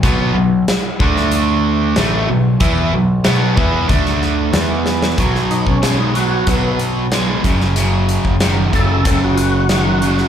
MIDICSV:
0, 0, Header, 1, 5, 480
1, 0, Start_track
1, 0, Tempo, 644468
1, 23, Time_signature, 4, 2, 24, 8
1, 7657, End_track
2, 0, Start_track
2, 0, Title_t, "Tonewheel organ"
2, 0, Program_c, 0, 16
2, 4101, Note_on_c, 0, 63, 74
2, 4214, Note_off_c, 0, 63, 0
2, 4233, Note_on_c, 0, 61, 71
2, 4462, Note_off_c, 0, 61, 0
2, 4468, Note_on_c, 0, 63, 69
2, 4578, Note_off_c, 0, 63, 0
2, 4586, Note_on_c, 0, 66, 78
2, 4818, Note_off_c, 0, 66, 0
2, 4832, Note_on_c, 0, 59, 87
2, 5061, Note_off_c, 0, 59, 0
2, 6511, Note_on_c, 0, 69, 83
2, 6619, Note_off_c, 0, 69, 0
2, 6640, Note_on_c, 0, 69, 76
2, 6744, Note_off_c, 0, 69, 0
2, 6759, Note_on_c, 0, 69, 79
2, 6864, Note_off_c, 0, 69, 0
2, 6884, Note_on_c, 0, 66, 74
2, 6962, Note_on_c, 0, 65, 60
2, 6986, Note_off_c, 0, 66, 0
2, 6989, Note_off_c, 0, 65, 0
2, 6995, Note_on_c, 0, 66, 85
2, 7657, Note_off_c, 0, 66, 0
2, 7657, End_track
3, 0, Start_track
3, 0, Title_t, "Overdriven electric guitar"
3, 0, Program_c, 1, 29
3, 24, Note_on_c, 1, 47, 88
3, 29, Note_on_c, 1, 54, 100
3, 30, Note_on_c, 1, 59, 100
3, 251, Note_off_c, 1, 47, 0
3, 257, Note_off_c, 1, 54, 0
3, 260, Note_off_c, 1, 59, 0
3, 260, Note_on_c, 1, 47, 66
3, 266, Note_on_c, 1, 54, 70
3, 454, Note_off_c, 1, 47, 0
3, 457, Note_off_c, 1, 54, 0
3, 741, Note_on_c, 1, 50, 82
3, 744, Note_on_c, 1, 57, 90
3, 751, Note_on_c, 1, 62, 99
3, 1456, Note_off_c, 1, 50, 0
3, 1457, Note_off_c, 1, 57, 0
3, 1460, Note_off_c, 1, 62, 0
3, 1464, Note_on_c, 1, 45, 83
3, 1471, Note_on_c, 1, 52, 88
3, 1471, Note_on_c, 1, 57, 94
3, 1697, Note_off_c, 1, 45, 0
3, 1700, Note_off_c, 1, 57, 0
3, 1701, Note_off_c, 1, 52, 0
3, 1706, Note_on_c, 1, 47, 61
3, 1709, Note_on_c, 1, 54, 68
3, 1897, Note_off_c, 1, 47, 0
3, 1899, Note_off_c, 1, 54, 0
3, 1938, Note_on_c, 1, 52, 79
3, 1944, Note_on_c, 1, 64, 98
3, 1946, Note_on_c, 1, 59, 91
3, 2174, Note_off_c, 1, 52, 0
3, 2177, Note_off_c, 1, 64, 0
3, 2178, Note_off_c, 1, 59, 0
3, 2189, Note_on_c, 1, 47, 64
3, 2189, Note_on_c, 1, 54, 67
3, 2379, Note_off_c, 1, 47, 0
3, 2379, Note_off_c, 1, 54, 0
3, 2423, Note_on_c, 1, 47, 77
3, 2426, Note_on_c, 1, 54, 81
3, 2433, Note_on_c, 1, 59, 99
3, 2656, Note_off_c, 1, 47, 0
3, 2658, Note_off_c, 1, 54, 0
3, 2658, Note_off_c, 1, 59, 0
3, 2659, Note_on_c, 1, 52, 83
3, 2667, Note_on_c, 1, 59, 85
3, 2669, Note_on_c, 1, 64, 90
3, 2903, Note_off_c, 1, 52, 0
3, 2903, Note_on_c, 1, 50, 79
3, 2904, Note_off_c, 1, 59, 0
3, 2904, Note_on_c, 1, 57, 88
3, 2909, Note_off_c, 1, 64, 0
3, 2909, Note_on_c, 1, 62, 97
3, 3383, Note_off_c, 1, 50, 0
3, 3383, Note_on_c, 1, 52, 81
3, 3385, Note_off_c, 1, 57, 0
3, 3385, Note_on_c, 1, 59, 88
3, 3386, Note_off_c, 1, 62, 0
3, 3386, Note_on_c, 1, 64, 99
3, 3857, Note_off_c, 1, 52, 0
3, 3857, Note_off_c, 1, 59, 0
3, 3858, Note_off_c, 1, 64, 0
3, 3863, Note_on_c, 1, 47, 70
3, 3866, Note_on_c, 1, 54, 80
3, 4296, Note_off_c, 1, 47, 0
3, 4297, Note_off_c, 1, 54, 0
3, 4336, Note_on_c, 1, 47, 74
3, 4343, Note_on_c, 1, 56, 83
3, 4556, Note_off_c, 1, 47, 0
3, 4560, Note_off_c, 1, 56, 0
3, 4585, Note_on_c, 1, 47, 67
3, 4588, Note_on_c, 1, 54, 82
3, 4801, Note_off_c, 1, 47, 0
3, 4802, Note_off_c, 1, 54, 0
3, 4824, Note_on_c, 1, 47, 71
3, 4828, Note_on_c, 1, 54, 70
3, 5256, Note_off_c, 1, 47, 0
3, 5258, Note_off_c, 1, 54, 0
3, 5302, Note_on_c, 1, 47, 75
3, 5306, Note_on_c, 1, 56, 77
3, 5519, Note_off_c, 1, 47, 0
3, 5521, Note_off_c, 1, 56, 0
3, 5554, Note_on_c, 1, 42, 69
3, 5555, Note_on_c, 1, 49, 71
3, 5765, Note_off_c, 1, 42, 0
3, 5766, Note_off_c, 1, 49, 0
3, 5786, Note_on_c, 1, 42, 71
3, 5793, Note_on_c, 1, 49, 87
3, 6217, Note_off_c, 1, 42, 0
3, 6220, Note_off_c, 1, 49, 0
3, 6267, Note_on_c, 1, 42, 70
3, 6268, Note_on_c, 1, 51, 89
3, 6481, Note_off_c, 1, 42, 0
3, 6482, Note_off_c, 1, 51, 0
3, 6506, Note_on_c, 1, 42, 70
3, 6508, Note_on_c, 1, 49, 77
3, 6721, Note_off_c, 1, 42, 0
3, 6722, Note_off_c, 1, 49, 0
3, 6745, Note_on_c, 1, 42, 77
3, 6748, Note_on_c, 1, 49, 81
3, 7176, Note_off_c, 1, 42, 0
3, 7178, Note_off_c, 1, 49, 0
3, 7226, Note_on_c, 1, 42, 80
3, 7227, Note_on_c, 1, 51, 82
3, 7440, Note_off_c, 1, 42, 0
3, 7441, Note_off_c, 1, 51, 0
3, 7469, Note_on_c, 1, 42, 70
3, 7474, Note_on_c, 1, 49, 73
3, 7657, Note_off_c, 1, 42, 0
3, 7657, Note_off_c, 1, 49, 0
3, 7657, End_track
4, 0, Start_track
4, 0, Title_t, "Picked electric bass"
4, 0, Program_c, 2, 34
4, 25, Note_on_c, 2, 35, 93
4, 247, Note_off_c, 2, 35, 0
4, 252, Note_on_c, 2, 35, 77
4, 481, Note_off_c, 2, 35, 0
4, 746, Note_on_c, 2, 38, 83
4, 1436, Note_off_c, 2, 38, 0
4, 1464, Note_on_c, 2, 33, 95
4, 1687, Note_off_c, 2, 33, 0
4, 1712, Note_on_c, 2, 35, 74
4, 1932, Note_off_c, 2, 35, 0
4, 1945, Note_on_c, 2, 40, 86
4, 2168, Note_off_c, 2, 40, 0
4, 2180, Note_on_c, 2, 35, 77
4, 2405, Note_off_c, 2, 35, 0
4, 2424, Note_on_c, 2, 35, 88
4, 2648, Note_off_c, 2, 35, 0
4, 2662, Note_on_c, 2, 40, 92
4, 2886, Note_off_c, 2, 40, 0
4, 2902, Note_on_c, 2, 38, 98
4, 3353, Note_off_c, 2, 38, 0
4, 3373, Note_on_c, 2, 40, 88
4, 3829, Note_off_c, 2, 40, 0
4, 3862, Note_on_c, 2, 35, 96
4, 4186, Note_off_c, 2, 35, 0
4, 4222, Note_on_c, 2, 35, 74
4, 4761, Note_off_c, 2, 35, 0
4, 4823, Note_on_c, 2, 35, 102
4, 5469, Note_off_c, 2, 35, 0
4, 5546, Note_on_c, 2, 30, 87
4, 6083, Note_off_c, 2, 30, 0
4, 6145, Note_on_c, 2, 30, 76
4, 6467, Note_off_c, 2, 30, 0
4, 6506, Note_on_c, 2, 30, 83
4, 6720, Note_off_c, 2, 30, 0
4, 6745, Note_on_c, 2, 30, 107
4, 7604, Note_off_c, 2, 30, 0
4, 7657, End_track
5, 0, Start_track
5, 0, Title_t, "Drums"
5, 24, Note_on_c, 9, 36, 107
5, 24, Note_on_c, 9, 42, 71
5, 98, Note_off_c, 9, 42, 0
5, 99, Note_off_c, 9, 36, 0
5, 507, Note_on_c, 9, 42, 68
5, 508, Note_on_c, 9, 38, 110
5, 581, Note_off_c, 9, 42, 0
5, 583, Note_off_c, 9, 38, 0
5, 745, Note_on_c, 9, 36, 107
5, 820, Note_off_c, 9, 36, 0
5, 868, Note_on_c, 9, 38, 28
5, 943, Note_off_c, 9, 38, 0
5, 980, Note_on_c, 9, 42, 69
5, 1054, Note_off_c, 9, 42, 0
5, 1460, Note_on_c, 9, 42, 57
5, 1461, Note_on_c, 9, 38, 95
5, 1534, Note_off_c, 9, 42, 0
5, 1536, Note_off_c, 9, 38, 0
5, 1939, Note_on_c, 9, 42, 71
5, 1942, Note_on_c, 9, 36, 101
5, 2013, Note_off_c, 9, 42, 0
5, 2016, Note_off_c, 9, 36, 0
5, 2416, Note_on_c, 9, 42, 72
5, 2418, Note_on_c, 9, 38, 114
5, 2491, Note_off_c, 9, 42, 0
5, 2492, Note_off_c, 9, 38, 0
5, 2662, Note_on_c, 9, 36, 115
5, 2736, Note_off_c, 9, 36, 0
5, 2899, Note_on_c, 9, 42, 70
5, 2900, Note_on_c, 9, 36, 104
5, 2973, Note_off_c, 9, 42, 0
5, 2975, Note_off_c, 9, 36, 0
5, 3021, Note_on_c, 9, 38, 31
5, 3096, Note_off_c, 9, 38, 0
5, 3141, Note_on_c, 9, 38, 33
5, 3216, Note_off_c, 9, 38, 0
5, 3377, Note_on_c, 9, 42, 69
5, 3378, Note_on_c, 9, 38, 108
5, 3451, Note_off_c, 9, 42, 0
5, 3453, Note_off_c, 9, 38, 0
5, 3618, Note_on_c, 9, 38, 59
5, 3692, Note_off_c, 9, 38, 0
5, 3742, Note_on_c, 9, 38, 88
5, 3817, Note_off_c, 9, 38, 0
5, 3857, Note_on_c, 9, 42, 84
5, 3859, Note_on_c, 9, 36, 105
5, 3932, Note_off_c, 9, 42, 0
5, 3933, Note_off_c, 9, 36, 0
5, 3987, Note_on_c, 9, 38, 30
5, 4061, Note_off_c, 9, 38, 0
5, 4103, Note_on_c, 9, 42, 56
5, 4177, Note_off_c, 9, 42, 0
5, 4220, Note_on_c, 9, 36, 67
5, 4294, Note_off_c, 9, 36, 0
5, 4341, Note_on_c, 9, 42, 85
5, 4342, Note_on_c, 9, 38, 90
5, 4415, Note_off_c, 9, 42, 0
5, 4417, Note_off_c, 9, 38, 0
5, 4582, Note_on_c, 9, 42, 61
5, 4657, Note_off_c, 9, 42, 0
5, 4817, Note_on_c, 9, 42, 86
5, 4820, Note_on_c, 9, 36, 107
5, 4892, Note_off_c, 9, 42, 0
5, 4894, Note_off_c, 9, 36, 0
5, 5060, Note_on_c, 9, 42, 61
5, 5135, Note_off_c, 9, 42, 0
5, 5300, Note_on_c, 9, 42, 76
5, 5302, Note_on_c, 9, 38, 98
5, 5375, Note_off_c, 9, 42, 0
5, 5376, Note_off_c, 9, 38, 0
5, 5543, Note_on_c, 9, 36, 91
5, 5545, Note_on_c, 9, 42, 67
5, 5618, Note_off_c, 9, 36, 0
5, 5620, Note_off_c, 9, 42, 0
5, 5665, Note_on_c, 9, 38, 29
5, 5740, Note_off_c, 9, 38, 0
5, 5780, Note_on_c, 9, 42, 89
5, 5854, Note_off_c, 9, 42, 0
5, 6023, Note_on_c, 9, 42, 64
5, 6098, Note_off_c, 9, 42, 0
5, 6143, Note_on_c, 9, 36, 68
5, 6218, Note_off_c, 9, 36, 0
5, 6259, Note_on_c, 9, 42, 89
5, 6261, Note_on_c, 9, 38, 104
5, 6334, Note_off_c, 9, 42, 0
5, 6335, Note_off_c, 9, 38, 0
5, 6504, Note_on_c, 9, 36, 76
5, 6505, Note_on_c, 9, 42, 70
5, 6578, Note_off_c, 9, 36, 0
5, 6580, Note_off_c, 9, 42, 0
5, 6742, Note_on_c, 9, 42, 98
5, 6743, Note_on_c, 9, 36, 105
5, 6816, Note_off_c, 9, 42, 0
5, 6818, Note_off_c, 9, 36, 0
5, 6983, Note_on_c, 9, 42, 66
5, 7057, Note_off_c, 9, 42, 0
5, 7219, Note_on_c, 9, 42, 84
5, 7220, Note_on_c, 9, 38, 91
5, 7293, Note_off_c, 9, 42, 0
5, 7295, Note_off_c, 9, 38, 0
5, 7462, Note_on_c, 9, 42, 60
5, 7536, Note_off_c, 9, 42, 0
5, 7579, Note_on_c, 9, 38, 30
5, 7653, Note_off_c, 9, 38, 0
5, 7657, End_track
0, 0, End_of_file